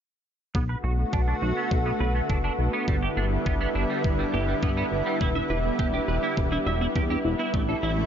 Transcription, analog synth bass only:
0.55 0.76 B1 medium
0.84 1.05 B1 medium
1.13 1.34 B1 medium
1.42 1.53 B1 medium
1.71 1.92 B1 medium
2.00 2.22 B1 loud
2.30 2.51 F#1 medium
2.59 2.69 B1 medium
2.88 3.09 G1 medium
3.17 3.38 G1 medium
3.46 3.67 G1 medium
3.75 3.86 G1 medium
4.04 4.25 G1 medium
4.34 4.55 G1 medium
4.63 4.84 G2 medium
4.92 5.02 G1 medium
5.21 5.42 E1 medium
5.50 5.71 E1 medium
5.79 6.00 E1 medium
6.08 6.19 E1 medium
6.37 6.58 E1 medium
6.67 6.88 E1 loud
6.96 7.17 E2 medium
7.25 7.35 E1 medium
7.54 7.75 A1 medium
7.83 8.04 A1 medium

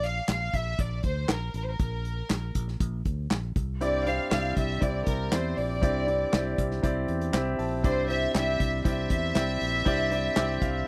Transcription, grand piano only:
3.81 4.53 G2 medium
3.81 4.01 C4 medium
3.81 4.01 E4 medium
3.81 4.01 G4 medium
3.81 4.01 D5 medium
4.06 4.26 C4 medium
4.06 4.26 E4 medium
4.06 4.26 G4 medium
4.06 4.27 C5 medium
4.31 4.70 C4 medium
4.31 4.70 E4 medium
4.31 4.71 G4 medium
4.31 4.71 D5 medium
4.81 5.20 C4 medium
4.81 5.21 E4 medium
4.81 5.21 G4 medium
4.81 5.21 D5 medium
5.32 5.71 C4 medium
5.32 5.71 E4 medium
5.32 5.72 G4 medium
5.32 5.72 D5 medium
5.82 6.54 G2 soft
5.82 6.02 C4 medium
5.82 6.02 E4 medium
5.82 6.02 G4 medium
5.82 6.02 D5 medium
6.07 6.27 C4 medium
6.07 6.27 E4 medium
6.07 6.27 G4 medium
6.07 6.28 D5 medium
6.32 6.72 C4 medium
6.32 6.72 E4 medium
6.32 6.72 G4 medium
6.32 6.73 D5 medium
6.83 7.22 C4 medium
6.83 7.22 E4 medium
6.83 7.23 G4 medium
6.83 7.23 D5 medium
7.33 7.72 C4 medium
7.33 7.73 E4 medium
7.33 7.73 G4 medium
7.33 7.73 E5 medium
7.59 7.82 A5 medium
7.83 8.56 G2 medium
7.83 8.04 C4 medium
7.83 8.04 E4 medium
7.83 8.04 G4 medium
7.83 8.04 D5 medium
8.09 8.29 C4 medium
8.09 8.29 E4 medium
8.09 8.29 G4 medium
8.09 8.29 C5 medium
8.34 8.73 C4 medium
8.34 8.74 E4 medium
8.34 8.74 G4 medium
8.34 8.74 D5 medium
8.84 9.24 C4 medium
8.84 9.24 E4 medium
8.84 9.24 G4 medium
8.84 9.25 D5 medium
9.35 9.74 C4 medium
9.35 9.74 E4 medium
9.35 9.75 G4 medium
9.35 9.75 D5 medium
9.85 10.58 G2 medium
9.85 10.05 C4 medium
9.85 10.05 E4 medium
9.85 10.06 G4 medium
9.85 10.06 D5 loud
10.11 10.31 C4 medium
10.11 10.31 E4 medium
10.11 10.31 G4 medium
10.11 10.31 D5 medium
10.36 10.75 C4 medium
10.36 10.75 E4 medium
10.36 10.76 G4 medium
10.36 10.76 D5 medium
10.62 10.85 F5 medium

